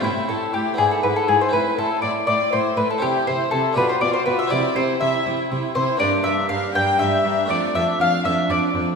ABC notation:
X:1
M:6/8
L:1/16
Q:3/8=80
K:Am
V:1 name="Violin section"
c'2 c'2 c'2 b2 b2 b2 | c'2 c'2 c'2 c'2 c'2 c'2 | c'2 c'2 c'2 g2 g2 g2 | g2 g2 g2 g2 g2 g2 |
[K:Dm] b2 b2 b2 b2 b2 b2 | a2 a2 a2 a2 a2 a2 |]
V:2 name="Mandolin"
E2 A2 G2 ^G A B A G c | B2 A2 d2 d2 c2 B A | G2 c2 A2 B c d c B e | d2 c2 e2 z4 c2 |
[K:Dm] d2 e2 f2 g2 e4 | d2 e2 f2 e2 d2 z2 |]
V:3 name="Violin section"
E2 A2 G2 ^G A B A G c | B2 A2 d2 d2 c2 B A | G2 c2 A2 B c d c B e | d2 c2 e2 z4 c2 |
[K:Dm] d2 e2 f2 g2 e4 | d2 e2 f2 e2 d2 z2 |]
V:4 name="Viola section"
E2 E2 E2 E2 E2 E2 | E2 E2 E2 E2 E2 E2 | E2 E2 E2 F2 F2 F2 | E2 E2 E2 E2 E2 E2 |
[K:Dm] D2 D2 D2 D2 D2 D2 | D2 D2 D2 D2 D2 D2 |]
V:5 name="Harpsichord"
[A,CE]6 [B,DE]6 | [CE]12 | [CE]6 [DFG]6 | [CEG]12 |
[K:Dm] [B,DG]12 | [A,DA]12 |]
V:6 name="Harpsichord" clef=bass
A,,2 A,,2 A,,2 ^G,,2 G,,2 G,,2 | A,,2 A,,2 A,,2 A,,2 A,,2 A,,2 | C,2 C,2 C,2 B,,2 B,,2 B,,2 | C,2 C,2 C,2 C,2 C,2 C,2 |
[K:Dm] G,,2 G,,2 G,,2 G,,2 G,,2 G,,2 | F,,2 F,,2 F,,2 F,,2 F,,2 F,,2 |]
V:7 name="Cello section" clef=bass
A,,2 A,,2 A,,2 ^G,,2 G,,2 G,,2 | A,,2 A,,2 A,,2 A,,2 A,,2 A,,2 | C,2 C,2 C,2 B,,2 B,,2 B,,2 | C,2 C,2 C,2 C,2 C,2 C,2 |
[K:Dm] G,,2 G,,2 G,,2 G,,2 G,,2 G,,2 | F,,2 F,,2 F,,2 F,,2 F,,2 F,,2 |]